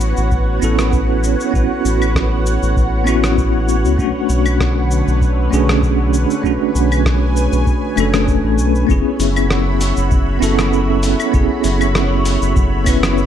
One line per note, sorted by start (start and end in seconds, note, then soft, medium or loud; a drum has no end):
0.00 0.14 A1 medium
0.00 0.58 B3 medium
0.00 0.58 C#4 medium
0.00 0.59 E4 medium
0.00 0.60 F#4 medium
0.00 3.95 F#4 medium
0.00 3.95 B4 medium
0.00 8.85 C#5 medium
0.00 6.40 F#5 medium
0.00 cabasa medium
0.17 0.59 A1 medium
0.17 cabasa soft
0.31 kick loud
0.31 cabasa soft
0.60 1.36 A1 medium
0.60 1.49 B3 medium
0.60 1.50 C#4 medium
0.60 1.51 E4 medium
0.60 cabasa medium
0.64 1.52 A4 medium
0.79 cross-stick medium
0.79 cabasa soft
0.93 kick loud
0.93 cabasa soft
1.24 cabasa medium
1.40 cabasa soft
1.51 1.68 A1 loud
1.51 3.02 B3 medium
1.51 3.03 C#4 medium
1.51 3.04 E4 medium
1.51 kick medium
1.55 3.04 F#4 medium
1.55 cabasa soft
1.85 2.58 A1 medium
1.85 cabasa medium
2.02 cabasa soft
2.02 claves medium
2.15 kick loud
2.15 cross-stick medium
2.15 cabasa soft
2.46 cabasa medium
2.63 2.75 A1 medium
2.63 cabasa soft
2.76 3.86 A1 medium
2.76 kick loud
2.76 cabasa soft
3.04 3.94 B3 medium
3.04 3.95 C#4 medium
3.04 3.96 E4 medium
3.04 cabasa medium
3.04 claves medium
3.09 3.96 F#4 loud
3.24 cross-stick medium
3.24 cabasa soft
3.38 kick loud
3.38 cabasa soft
3.69 cabasa medium
3.85 3.97 C#2 loud
3.85 cabasa soft
3.96 4.13 B1 loud
3.96 8.84 D3 medium
3.96 5.47 A3 medium
3.96 5.48 C#4 medium
3.96 5.49 D4 medium
3.96 8.85 B4 medium
3.96 kick loud
3.96 cabasa soft
4.01 5.49 F#4 medium
4.29 5.03 B1 medium
4.29 cabasa medium
4.46 cabasa soft
4.46 claves medium
4.60 kick medium
4.60 cross-stick medium
4.60 cabasa soft
4.91 cabasa medium
5.08 5.49 B1 medium
5.08 cabasa soft
5.21 kick loud
5.21 cabasa soft
5.50 6.26 B1 medium
5.50 6.39 A3 medium
5.50 6.40 C#4 medium
5.50 6.41 D4 medium
5.50 cabasa medium
5.54 6.41 G#4 medium
5.69 cross-stick medium
5.69 cabasa soft
5.83 kick medium
5.83 cabasa soft
6.14 cabasa medium
6.30 cabasa soft
6.42 6.58 B1 loud
6.42 7.92 A3 medium
6.42 7.93 C#4 medium
6.42 7.94 D4 medium
6.42 8.86 G#5 medium
6.42 kick medium
6.42 cabasa soft
6.46 7.95 F#4 medium
6.75 7.48 B1 medium
6.75 cabasa medium
6.92 cabasa soft
6.92 claves medium
7.05 kick loud
7.05 cross-stick medium
7.05 cabasa soft
7.36 cabasa medium
7.53 7.64 B1 medium
7.53 cabasa soft
7.67 kick loud
7.67 cabasa soft
7.96 8.40 F#1 loud
7.96 8.85 A3 medium
7.96 8.85 C#4 medium
7.96 8.86 D4 medium
7.96 cabasa medium
7.96 claves medium
8.00 8.87 A4 medium
8.14 cross-stick medium
8.14 cabasa soft
8.28 kick medium
8.28 cabasa soft
8.44 8.59 A1 loud
8.58 8.84 B1 medium
8.58 cabasa medium
8.75 cabasa soft
8.87 9.03 F#1 loud
8.87 10.37 B3 medium
8.87 10.38 C#4 medium
8.87 10.39 E4 medium
8.87 13.26 F#4 medium
8.87 13.26 C#5 medium
8.87 13.26 E5 medium
8.87 13.26 B5 medium
8.87 kick loud
8.87 cabasa soft
8.91 10.40 G#4 medium
9.19 9.93 F#1 medium
9.19 open hi-hat medium
9.19 cabasa medium
9.36 cabasa soft
9.36 claves medium
9.51 cross-stick medium
9.51 cabasa soft
9.81 open hi-hat medium
9.81 cabasa medium
9.97 10.38 F#1 medium
9.97 cabasa soft
10.11 kick loud
10.11 cabasa soft
10.39 11.15 F#1 medium
10.39 11.29 B3 medium
10.39 11.30 C#4 medium
10.39 11.30 E4 medium
10.39 open hi-hat medium
10.39 cabasa medium
10.43 11.31 A4 loud
10.59 cross-stick medium
10.59 cabasa soft
10.73 cabasa soft
11.03 open hi-hat medium
11.03 cabasa medium
11.20 cabasa soft
11.20 claves medium
11.31 11.48 F#1 loud
11.31 12.82 B3 medium
11.31 12.83 C#4 medium
11.31 12.84 E4 medium
11.31 12.84 G#4 medium
11.31 kick loud
11.31 cabasa soft
11.64 12.38 F#1 medium
11.64 open hi-hat medium
11.64 cabasa medium
11.81 cabasa soft
11.81 claves medium
11.95 cross-stick medium
11.95 cabasa soft
12.25 open hi-hat medium
12.25 cabasa medium
12.42 12.54 F#1 medium
12.42 cabasa soft
12.56 13.26 F#1 medium
12.56 kick loud
12.56 cabasa soft
12.84 13.26 B3 medium
12.84 13.26 C#4 medium
12.84 13.26 E4 medium
12.84 kick loud
12.84 open hi-hat medium
12.84 cabasa medium
12.84 claves medium
12.89 13.26 B4 medium
13.03 cross-stick medium
13.03 cabasa soft
13.18 cabasa soft